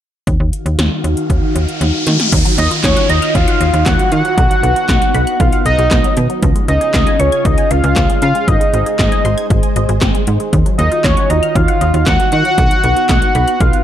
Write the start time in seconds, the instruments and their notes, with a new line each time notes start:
0.27 fm bass D#2, string machine D#3 D#4 F#4 F5, kick, closed hi-hat, riser
0.40 fm bass D#2
0.53 closed hi-hat
0.66 fm bass D#2, closed hi-hat
0.79 fm bass D#2, snare, closed hi-hat
1.04 fm bass D#2, closed hi-hat
1.17 closed hi-hat
1.30 fm bass D#2, kick, closed hi-hat
1.55 fm bass D#2, closed hi-hat
1.69 closed hi-hat
1.81 fm bass D#2, snare, closed hi-hat
2.07 fm bass D#3, snare, closed hi-hat
2.20 snare, closed hi-hat
2.32 fm bass D#2, synth arpeggio sound D#3, string machine D#3 D#4 F4 F#4, kick, closed hi-hat, crash, downlifter
2.45 synth arpeggio sound F#3, closed hi-hat
2.58 fm bass D#2, synth arpeggio sound A#3, analog synth lead D#5, closed hi-hat
2.71 synth arpeggio sound F4, closed hi-hat
2.84 fm bass D#2, analog synth lead C#5, synth arpeggio sound D#5, kick, snare, clap, closed hi-hat
2.97 synth arpeggio sound F#5, closed hi-hat
3.09 fm bass D#2, analog synth lead D#5, synth arpeggio sound A#5, closed hi-hat
3.22 synth arpeggio sound F6, closed hi-hat
3.35 fm bass D#2, analog synth lead F5, kick, closed hi-hat
3.48 synth arpeggio sound F#5, closed hi-hat
3.60 fm bass D#2, synth arpeggio sound D#5, closed hi-hat
3.73 fm bass D#2, synth arpeggio sound F4, closed hi-hat
3.86 fm bass D#2, synth arpeggio sound A#3, analog synth lead F#5, kick, snare, clap, closed hi-hat
3.99 synth arpeggio sound F#3, closed hi-hat
4.12 synth arpeggio sound D#3, fm bass D#3, analog synth lead F#5, closed hi-hat
4.25 synth arpeggio sound F#3, closed hi-hat
4.37 fm bass B1, synth arpeggio sound D#3, string machine B3 D#4, kick, closed hi-hat
4.50 synth arpeggio sound F#3, closed hi-hat
4.63 fm bass B1, synth arpeggio sound B3, closed hi-hat
4.76 synth arpeggio sound F#4, closed hi-hat
4.89 fm bass B1, synth arpeggio sound D#5, kick, snare, clap, closed hi-hat
5.02 synth arpeggio sound F#5, closed hi-hat
5.14 fm bass B1, synth arpeggio sound B5, closed hi-hat
5.27 synth arpeggio sound F#6, closed hi-hat
5.40 fm bass B1, analog synth lead F5, kick, closed hi-hat
5.53 synth arpeggio sound F#5, closed hi-hat
5.66 fm bass B1, synth arpeggio sound D#5, analog synth lead D#5, closed hi-hat
5.78 fm bass B1, synth arpeggio sound F#4, closed hi-hat
5.91 fm bass B1, synth arpeggio sound B3, kick, snare, clap, closed hi-hat
6.04 synth arpeggio sound F#3, closed hi-hat
6.17 fm bass B2, synth arpeggio sound D#3, closed hi-hat
6.30 synth arpeggio sound F#3, closed hi-hat
6.42 fm bass C#2, string machine C#3 C#4 F4 G#4, synth arpeggio sound F3, kick, closed hi-hat
6.55 synth arpeggio sound G#3, closed hi-hat
6.68 fm bass C#2, synth arpeggio sound C#4, analog synth lead D#5, closed hi-hat
6.81 synth arpeggio sound G#4, closed hi-hat
6.94 fm bass C#2, synth arpeggio sound F5, kick, snare, clap, closed hi-hat
7.07 synth arpeggio sound G#5, closed hi-hat
7.20 fm bass C#2, analog synth lead C#5, synth arpeggio sound C#6, closed hi-hat
7.32 synth arpeggio sound G#6, closed hi-hat
7.45 fm bass C#2, analog synth lead D#5, kick, closed hi-hat
7.58 synth arpeggio sound G#5, closed hi-hat
7.71 fm bass C#2, analog synth lead F5, synth arpeggio sound F5, closed hi-hat
7.84 fm bass C#2, synth arpeggio sound G#4, closed hi-hat
7.96 fm bass C#2, synth arpeggio sound C#4, kick, snare, clap, closed hi-hat
8.10 synth arpeggio sound G#3, closed hi-hat
8.22 fm bass C#3, synth arpeggio sound F3, analog synth lead F5, closed hi-hat
8.35 synth arpeggio sound G#3, closed hi-hat
8.48 fm bass G#1, synth arpeggio sound D#3, string machine G#3 C5 D#5, analog synth lead D#5, kick, closed hi-hat
8.61 synth arpeggio sound G#3, closed hi-hat
8.73 fm bass G#1, synth arpeggio sound C4, closed hi-hat
8.86 synth arpeggio sound G#4, closed hi-hat
8.99 fm bass G#1, synth arpeggio sound D#5, analog synth lead D#5, kick, snare, clap, closed hi-hat
9.12 synth arpeggio sound G#5, closed hi-hat
9.25 fm bass G#1, synth arpeggio sound C6, closed hi-hat
9.38 synth arpeggio sound G#6, closed hi-hat
9.50 fm bass G#1, kick, closed hi-hat
9.63 synth arpeggio sound G#5, closed hi-hat
9.76 fm bass G#1, synth arpeggio sound D#5, closed hi-hat
9.89 fm bass G#1, synth arpeggio sound G#4, closed hi-hat
10.01 fm bass G#1, synth arpeggio sound C4, kick, snare, clap, closed hi-hat
10.15 synth arpeggio sound G#3, closed hi-hat
10.27 fm bass G#2, synth arpeggio sound D#3, closed hi-hat
10.40 synth arpeggio sound G#3, closed hi-hat
10.53 fm bass D#2, string machine D#3 D#4 F4 F#4, synth arpeggio sound D#3, kick, closed hi-hat
10.66 synth arpeggio sound F#3, closed hi-hat
10.78 fm bass D#2, synth arpeggio sound A#3, analog synth lead D#5, closed hi-hat
10.91 synth arpeggio sound F4, closed hi-hat
11.04 fm bass D#2, analog synth lead C#5, synth arpeggio sound D#5, kick, snare, clap, closed hi-hat
11.17 synth arpeggio sound F#5, closed hi-hat
11.30 fm bass D#2, analog synth lead D#5, synth arpeggio sound A#5, closed hi-hat
11.43 synth arpeggio sound F6, closed hi-hat
11.55 fm bass D#2, analog synth lead F5, kick, closed hi-hat
11.68 synth arpeggio sound F#5, closed hi-hat
11.81 fm bass D#2, synth arpeggio sound D#5, closed hi-hat
11.94 fm bass D#2, synth arpeggio sound F4, closed hi-hat
12.06 fm bass D#2, synth arpeggio sound A#3, analog synth lead F#5, kick, snare, clap, closed hi-hat
12.20 synth arpeggio sound F#3, closed hi-hat
12.32 synth arpeggio sound D#3, fm bass D#3, analog synth lead F#5, closed hi-hat
12.45 synth arpeggio sound F#3, closed hi-hat
12.58 fm bass B1, synth arpeggio sound D#3, string machine B3, kick, closed hi-hat
12.71 synth arpeggio sound F#3, closed hi-hat
12.84 fm bass B1, synth arpeggio sound B3, closed hi-hat
12.97 synth arpeggio sound F#4, closed hi-hat
13.09 fm bass B1, synth arpeggio sound D#5, kick, snare, clap, closed hi-hat
13.22 synth arpeggio sound F#5, closed hi-hat
13.35 fm bass B1, synth arpeggio sound B5, closed hi-hat
13.48 synth arpeggio sound F#6, closed hi-hat
13.60 fm bass B1, analog synth lead F5, kick, closed hi-hat
13.73 synth arpeggio sound F#5, closed hi-hat